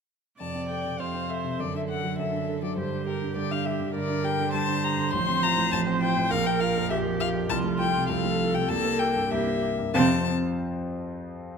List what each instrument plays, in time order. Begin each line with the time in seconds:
0.39 grand piano F2, cello C3, viola D5, violin A5
0.55 grand piano C4
0.70 grand piano A4, violin G5
0.85 grand piano C3
0.99 grand piano F2, cello C3, viola C5, violin F5
1.14 grand piano C4
1.29 grand piano A4, violin E5
1.44 grand piano C3
1.59 grand piano F#2, cello D3, viola A4, violin D5
1.74 grand piano D4, violin E5
1.89 grand piano A4, violin F#5
2.03 grand piano F#3
2.18 grand piano F#2, viola A4, violin E5
2.33 grand piano D4
2.48 grand piano A4
2.63 grand piano F#3, violin D5
2.77 grand piano G2, cello D3, viola G4, violin C5
2.92 grand piano D4
3.07 grand piano G4, violin A#4
3.22 grand piano D3
3.36 grand piano G2, cello D3, violin D5
3.51 grand piano D4, violin F5
3.65 grand piano G4, violin E5
3.80 grand piano D3
3.94 grand piano G2, cello D3, viola A#4, violin D5
4.10 grand piano D4
4.24 grand piano G4, violin G5
4.39 grand piano D3
4.53 grand piano G2, viola C5, violin A5
4.68 grand piano D4
4.84 grand piano G4, violin A#5
4.98 grand piano D3
5.13 grand piano A1, cello F3, violin C6
5.28 grand piano C4
5.43 grand piano F4, violin A#5
5.57 grand piano A2
5.72 grand piano A1, cello F3, violin A5
5.87 grand piano C4
6.01 grand piano F4, violin G5
6.16 grand piano A2
6.31 grand piano A#1, cello F3, viola A#4, violin F5
6.46 grand piano A#3, violin G5
6.60 grand piano F4, violin F5
6.76 grand piano F2
6.90 grand piano A#1, viola G4, violin E5
7.05 grand piano A#3
7.20 grand piano F4, violin F5
7.35 grand piano F2
7.49 grand piano C2, cello F3, viola F4, violin A5
7.64 grand piano A3
7.79 grand piano F4, violin G5
7.95 grand piano C3
8.09 grand piano C2, cello F3, viola A4, violin F5
8.25 grand piano A3
8.39 grand piano F4
8.54 grand piano C3, violin G5
8.69 grand piano C2, cello A#3, violin A5
8.85 grand piano A#3
8.99 grand piano G4, violin G5
9.16 grand piano G2
9.31 grand piano C2, cello A#3, viola G4, violin E5
9.47 grand piano A#3
9.63 grand piano G4
9.79 grand piano G2
9.94 grand piano F2 F3 C4 F4 C5 F5, cello C3, viola C4, violin A5